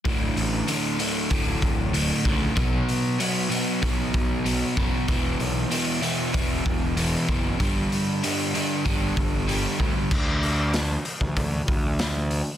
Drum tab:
CC |----------------|----------------|----------------|----------------|
HH |o-o-o-o-o-o-o-o-|o-o-o-o-o-o-o-o-|o-o-o-o-o-o-o-o-|o-o-o-o-o-o-o-o-|
SD |----------------|----------------|----------------|----------------|
BD |o-------o-o---o-|o-------o-o---o-|o-------o-o---o-|o-------o-o---o-|

CC |x---------------|
HH |--o-o-o-o-o-o-o-|
SD |----o-------o---|
BD |o------oo-o-----|